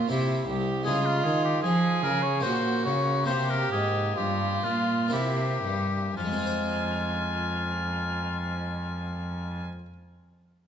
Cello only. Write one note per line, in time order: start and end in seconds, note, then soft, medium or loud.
0.11 0.48 C3 medium
0.48 0.88 C2 medium
0.87 1.26 C#3 medium
1.25 1.63 D#3 medium
1.63 2.04 F3 medium
2.03 2.46 C#3 medium
2.44 2.87 A#2 medium
2.85 3.30 C#3 medium
3.29 3.72 C3 medium
3.72 4.17 G#2 medium
4.17 4.63 G2 medium
4.65 5.15 A#2 medium
5.13 5.63 C3 medium
5.64 6.16 G2 medium
6.17 9.64 F2 medium